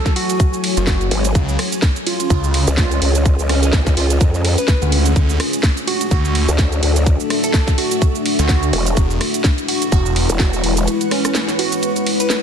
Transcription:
Already playing: ambient pad F#3 E4 F#4 A4 C#5 G#5
0.05 kick, snare, closed hi-hat, shaker
0.16 synth pluck F#4, open hi-hat, ride
0.30 synth pluck F#4, closed hi-hat, shaker
0.40 kick, closed hi-hat, shaker
0.53 shaker
0.64 open hi-hat, ride
0.77 detuned saw bass F#1, synth pluck F#4, closed hi-hat, shaker
0.87 kick, snare, closed hi-hat, shaker
1.01 closed hi-hat, shaker
1.11 wobble bass G#1, open hi-hat, ride
1.25 closed hi-hat, shaker
1.35 detuned saw bass C#2, ambient pad G#3 C#4 F4 C#5, kick, closed hi-hat, shaker
1.49 shaker
1.58 ambient pad G#4, cross-stick, open hi-hat, ride
1.72 closed hi-hat, shaker
1.82 kick, snare, closed hi-hat, shaker
1.96 closed hi-hat, shaker
2.07 synth pluck F4, open hi-hat, ride
2.20 closed hi-hat, shaker
2.30 detuned saw bass C#2, synth pluck F4, kick, closed hi-hat, shaker
2.44 shaker
2.54 open hi-hat, ride
2.68 wobble bass C#2, closed hi-hat, shaker
2.77 synth pluck F4, kick, snare, closed hi-hat, shaker
2.91 synth pluck F4, closed hi-hat, shaker
3.02 wobble bass C#2, open hi-hat, ride
3.15 closed hi-hat, shaker
3.26 ambient pad B4, kick, closed hi-hat, shaker
3.39 wobble bass C#2, shaker
3.49 synth pluck C#4, cross-stick, open hi-hat, ride
3.63 synth pluck C#4, closed hi-hat, shaker
3.73 wobble bass C#2, kick, snare, closed hi-hat, shaker
3.86 kick, snare, closed hi-hat, shaker
3.97 wobble bass C#2, synth pluck F4, open hi-hat, ride
4.10 closed hi-hat, shaker
4.21 wobble bass F2, kick, closed hi-hat, shaker
4.34 shaker
4.45 open hi-hat, ride
4.58 synth pluck B4, closed hi-hat, shaker
4.68 kick, snare, closed hi-hat, shaker
4.82 detuned saw bass D2, closed hi-hat, shaker
4.92 open hi-hat, ride
5.06 closed hi-hat, shaker
5.16 detuned saw bass D2, ambient pad A3 D4 F#4, kick, closed hi-hat, shaker
5.30 shaker
5.40 ambient pad A4, cross-stick, open hi-hat, ride
5.53 closed hi-hat, shaker
5.63 kick, snare, closed hi-hat, shaker
5.77 closed hi-hat, shaker
5.87 synth pluck F#4, open hi-hat, ride
5.93 ambient pad E5
6.01 closed hi-hat, shaker
6.11 detuned saw bass D2, synth pluck F#4, kick, closed hi-hat, shaker
6.25 shaker
6.35 open hi-hat, ride
6.49 wobble bass D2, closed hi-hat, shaker
6.58 kick, snare, closed hi-hat, shaker
6.72 closed hi-hat, shaker
6.83 wobble bass D2, open hi-hat, ride
6.96 closed hi-hat, shaker
7.06 kick, closed hi-hat, shaker
7.20 shaker
7.30 cross-stick, open hi-hat, ride
7.44 synth pluck A4, closed hi-hat, shaker
7.54 kick, snare, closed hi-hat, shaker
7.67 kick, snare, closed hi-hat, shaker
7.78 synth pluck F#4, open hi-hat, ride
7.91 synth pluck F#4, closed hi-hat, shaker
8.02 kick, closed hi-hat, shaker
8.15 shaker
8.26 open hi-hat, ride
8.39 detuned saw bass D2, synth pluck F#4, closed hi-hat, shaker
8.49 kick, snare, closed hi-hat, shaker
8.63 closed hi-hat, shaker
8.73 wobble bass E1, open hi-hat, ride
8.87 closed hi-hat, shaker
8.97 detuned saw bass E1, ambient pad G#3 E4 B4, kick, closed hi-hat, shaker
9.10 shaker
9.21 cross-stick, open hi-hat, ride
9.34 closed hi-hat, shaker
9.44 ambient pad B4, kick, snare, closed hi-hat, shaker
9.58 closed hi-hat, shaker
9.68 synth pluck F#4, open hi-hat, ride
9.82 closed hi-hat, shaker
9.86 ambient pad F#5
9.92 detuned saw bass E1, synth pluck F#4, kick, closed hi-hat, shaker
10.06 shaker
10.16 open hi-hat, ride
10.30 wobble bass E1, closed hi-hat, shaker
10.39 synth pluck F#4, kick, snare, closed hi-hat, shaker
10.53 synth pluck F#4, closed hi-hat, shaker
10.64 wobble bass E1, open hi-hat, ride
10.77 closed hi-hat, shaker
10.87 ambient pad C#5, closed hi-hat, shaker
11.01 closed hi-hat, shaker
11.11 synth pluck C#4, cross-stick, open hi-hat, ride
11.25 synth pluck C#4, cross-stick, closed hi-hat, shaker
11.35 snare, closed hi-hat, shaker
11.48 snare, closed hi-hat, shaker
11.59 synth pluck F#4, open hi-hat, ride
11.72 closed hi-hat, shaker
11.83 closed hi-hat, shaker
11.96 closed hi-hat, shaker
12.07 open hi-hat, ride
12.20 synth pluck B4, closed hi-hat, shaker
12.30 snare, closed hi-hat, shaker

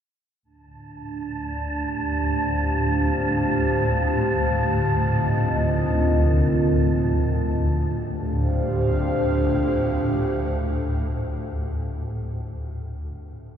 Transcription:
0.43 synth drone D2 A2, analog synth pad D4, synth texture A5
1.58 analog synth pad G4
2.09 analog synth pad C5 F5
4.06 analog synth pad D3
4.33 analog synth pad C4
4.64 analog synth pad F4
4.92 analog synth pad D#5
5.53 analog synth pad A#4
7.66 synth drone D2 A2, analog synth pad D4
7.83 analog synth pad G4
7.94 analog synth pad C5
8.07 analog synth pad F5

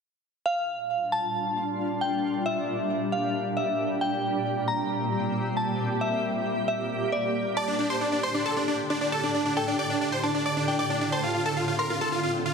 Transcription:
0.46 ambient pad A#2 G3 D4 F4, synth bell F5
1.12 synth bell A5
2.01 synth bell G5
2.23 ambient pad G4
2.46 synth bell E5
3.12 synth bell F5
3.57 synth bell E5
4.01 ambient pad C4, synth bell G5
4.68 synth bell A#5
5.57 synth bell A5
5.79 ambient pad A#3
6.01 synth bell E5
6.68 synth bell E5
7.12 synth bell D5
7.57 ambient pad A2 D3 D4, supersaw synth D5, synth bell A5, synth pluck D6
7.68 supersaw synth D4, synth pluck D5
7.79 supersaw synth D4, synth pluck D5
7.90 supersaw synth C5, synth pluck C6
8.01 supersaw synth D4, synth pluck D5
8.12 supersaw synth D4, synth pluck D5
8.23 supersaw synth C5, synth bell C6, synth pluck C6
8.34 supersaw synth D4, synth pluck D5
8.46 supersaw synth A4, synth pluck A5
8.57 supersaw synth D4, synth pluck D5
8.68 supersaw synth D4, synth pluck D5
8.90 supersaw synth D4, synth pluck D5
9.01 supersaw synth D4, synth pluck D5
9.12 supersaw synth A4, synth bell A5, synth pluck A5
9.23 supersaw synth D4, synth pluck D5
9.34 supersaw synth D4, synth pluck D5
9.46 supersaw synth D4, synth pluck D5
9.57 supersaw synth A4, synth bell G5, synth pluck A5
9.68 supersaw synth D4, synth pluck D5
9.79 supersaw synth D5, synth pluck D6
9.90 supersaw synth D4, synth pluck D5
10.01 supersaw synth D4, synth pluck D5
10.12 supersaw synth C5, synth pluck C6
10.23 supersaw synth D4, synth pluck D5, synth bell A5
10.34 supersaw synth D4, synth pluck D5
10.46 supersaw synth D5, synth pluck D6
10.57 supersaw synth D4, synth pluck D5
10.68 supersaw synth D4, synth pluck D5, synth bell G5
10.79 supersaw synth D5, synth pluck D6
10.90 supersaw synth D4, synth pluck D5
11.01 supersaw synth D4, synth pluck D5
11.12 ambient pad C4 F4, supersaw synth C5, synth bell A5, synth pluck C6
11.23 supersaw synth F4, synth pluck F5
11.35 supersaw synth F4, synth pluck F5
11.46 supersaw synth A4, synth pluck A5
11.57 supersaw synth F4, synth pluck F5
11.68 supersaw synth F4, synth pluck F5
11.79 supersaw synth A#4, synth pluck A#5, synth bell C6
11.90 supersaw synth F4, synth pluck F5
12.01 supersaw synth A4, synth pluck A5
12.12 supersaw synth F4, synth pluck F5
12.23 supersaw synth F4, synth pluck F5
12.46 supersaw synth F4, synth pluck F5

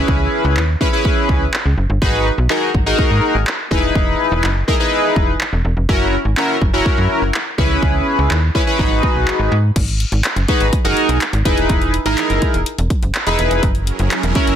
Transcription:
Already playing: analog polysynth C#4 E4 G#4 B4
0.08 fm bass C#2, kick
0.45 fm bass C#2
0.57 fm bass D#2, clap
0.81 analog polysynth C#4 E4 G#4 B4, kick
0.93 analog polysynth C#4 E4 G#4 B4
1.05 kick
1.29 fm bass C#2, kick
1.54 clap
1.65 fm bass C#2
1.78 fm bass F#1
1.90 fm bass G1
2.02 fm bass G#1, analog polysynth D#4 F#4 G#4 B4, kick
2.38 fm bass B1
2.50 analog polysynth D#4 F#4 G#4 A#4, clap
2.75 fm bass G#1, kick
2.86 analog polysynth D#4 F#4 G#4 A#4
2.99 fm bass G#2, kick
3.11 fm bass G#2
3.35 fm bass G#1
3.47 clap
3.71 fm bass E1, analog polysynth D#4 E4 G#4 B4, kick
3.95 fm bass E1, kick
4.32 fm bass E1
4.44 fm bass F#1, clap
4.68 analog polysynth D#4 E4 G#4 A#4, kick
4.80 analog polysynth D#4 E4 G#4 B4
5.16 fm bass E1, kick
5.41 clap
5.53 fm bass E1
5.65 fm bass E1
5.77 fm bass F1
5.89 analog polysynth C#4 E4 F#4 A#4, kick
6.25 fm bass G#1
6.37 analog polysynth C#4 E4 F#4 A#4, clap
6.62 fm bass F#1, kick
6.73 analog polysynth C#4 E4 F#4 A#4
6.86 fm bass F#2, kick
6.98 fm bass F#2
7.22 fm bass F#1
7.34 clap
7.58 fm bass C#2, analog polysynth C#4 E4 G#4 B4, kick
7.83 fm bass C#2, kick
8.19 fm bass C#2
8.31 fm bass D#2, clap
8.55 analog polysynth C#4 E4 G#4 B4, kick
8.67 analog polysynth C#4 E4 G#4 B4
8.79 fm bass G#1, analog polysynth D#4 F#4 G#4 B4, kick
8.91 fm bass G#1
9.03 kick
9.15 fm bass B1
9.28 clap
9.39 fm bass G#1
9.52 fm bass G#2
9.76 fm bass G#1, kick, closed hi-hat, crash
9.88 closed hi-hat
10.00 closed hi-hat
10.12 fm bass G#1, closed hi-hat
10.24 clap, closed hi-hat
10.36 fm bass F#1, closed hi-hat
10.48 analog polysynth D#4 F#4 G#4 B4, kick, closed hi-hat
10.61 fm bass G#1, closed hi-hat
10.73 kick, closed hi-hat
10.85 fm bass F#1, analog polysynth D#4 F#4 G#4 A#4, closed hi-hat
10.97 closed hi-hat
11.09 fm bass B1, closed hi-hat
11.21 clap, closed hi-hat
11.33 fm bass G#1, closed hi-hat
11.45 analog polysynth D#4 E4 G#4 B4, kick, closed hi-hat
11.57 fm bass D#1, closed hi-hat
11.70 fm bass E1, kick, closed hi-hat
11.82 closed hi-hat
11.94 closed hi-hat
12.06 fm bass G#1, analog polysynth D#4 E4 G#4 A#4, closed hi-hat
12.18 clap, closed hi-hat
12.30 fm bass F#1, closed hi-hat
12.42 kick, closed hi-hat
12.54 fm bass E1, closed hi-hat
12.66 closed hi-hat
12.78 fm bass E1, closed hi-hat
12.90 kick, closed hi-hat
13.03 fm bass F#1, closed hi-hat
13.14 clap, closed hi-hat
13.27 fm bass E1, analog polysynth D#4 E4 G#4 B4, closed hi-hat
13.39 fm bass E1, closed hi-hat
13.51 fm bass F1, closed hi-hat
13.63 fm bass F#1, supersaw synth F#3 C#4 E4 G#4 A#4, kick, closed hi-hat
13.75 closed hi-hat
13.87 closed hi-hat
13.99 fm bass F#1, closed hi-hat
14.11 clap, closed hi-hat
14.23 fm bass E1, closed hi-hat
14.35 analog polysynth C#4 E4 F#4 A#4, kick, closed hi-hat
14.47 fm bass F#1, closed hi-hat

